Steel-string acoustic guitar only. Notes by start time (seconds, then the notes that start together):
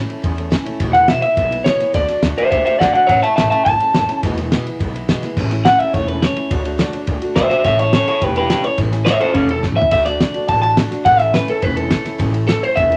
0.08 A3 C#4 E4
0.22 E3 A3 C#4 E4
0.36 A3 C#4 E4
0.50 A2 E3 A3 C#4 E4
0.64 A3 C#4 E4
0.80 E2 B2 E3 G#3 B3 E4
0.94 E3 G#3 B3 E4
1.08 E2 B2 E3 G#3 B3 E4
1.22 E3 G#3 B3 E4
1.36 E3 G#3 B3 E4
1.50 E3 G#3 B3 E4
1.65 E2 B2 E3 G#3 B3 E4
1.79 E3 G#3 B3 E4
1.93 D3 A3 D4 F#4
2.08 A3 D4 F#4
2.23 D3 A3 D4 F#4
2.36 A3 D4 F#4
2.50 D3 A3 D4 F#4
2.65 A3 D4 F#4
2.80 D3 A3 D4 F#4
2.94 A3 D4 F#4
3.09 A2 E3 A3 C#4 E4
3.23 A3 C#4 E4
3.37 A2 E3 A3 C#4 E4
3.50 A3 C#4 E4
3.66 E3 A3 C#4 E4
3.80 A3 C#4 E4
3.95 A2 E3 A3 C#4 E4
4.09 A3 C#4 E4
4.23 E2 B2 E3 G#3 B3 E4
4.37 E3 G#3 B3 E4
4.52 E2 B2 E3 G#3 B3 E4
4.66 E3 G#3 B3 E4
4.79 E3 G#3 B3 E4
4.94 E3 G#3 B3 E4
5.08 E2 B2 E3 G#3 B3 E4
5.23 E3 G#3 B3 E4
5.38 A2 E3 A3 C#4 E4
5.52 A3 C#4 E4
5.66 A2 E3 A3 C#4 E4
5.80 A3 C#4 E4
5.93 E3 A3 C#4 E4
6.08 A3 C#4 E4
6.23 A2 E3 A3 C#4 E4
6.37 A3 C#4 E4
6.50 D3 A3 D4 F#4
6.64 A3 D4 F#4
6.78 D3 A3 D4 F#4
6.92 A3 D4 F#4
7.06 D3 A3 D4 F#4
7.22 A3 D4 F#4
7.36 D3 A3 D4 F#4
7.50 A3 D4 F#4
7.65 A2 E3 A3 C#4 E4
7.78 A3 C#4 E4
7.93 A2 E3 A3 C#4 E4
8.07 A3 C#4 E4
8.21 E3 A3 C#4 E4
8.35 A3 C#4 E4
8.49 A2 E3 A3 C#4 E4
8.64 A3 C#4 E4
8.78 A2 E3 A3 C#4 E4
8.92 A3 C#4 E4
9.06 A2 E3 A3 C#4 E4
9.20 A3 C#4 E4
9.35 E3 A3 C#4 E4
9.49 A3 C#4 E4
9.63 A2 E3 A3 C#4 E4
9.78 A3 C#4 E4
9.92 D3 A3 D4 F#4
10.06 A3 D4 F#4
10.20 D3 A3 D4 F#4
10.34 A3 D4 F#4
10.48 D3 A3 D4 F#4
10.62 A3 D4 F#4
10.77 D3 A3 D4 F#4
10.91 A3 D4 F#4
11.05 A2 E3 A3 C#4 E4
11.19 A3 C#4 E4
11.34 A2 E3 A3 C#4 E4
11.48 A3 C#4 E4
11.62 E3 A3 C#4 E4
11.77 A3 C#4 E4
11.91 A2 E3 A3 C#4 E4
12.05 A3 C#4 E4
12.18 A2 E3 A3 C#4 E4
12.33 A3 C#4 E4
12.47 A2 E3 A3 C#4 E4
12.61 A3 C#4 E4
12.75 E3 A3 C#4 E4
12.90 A3 C#4 E4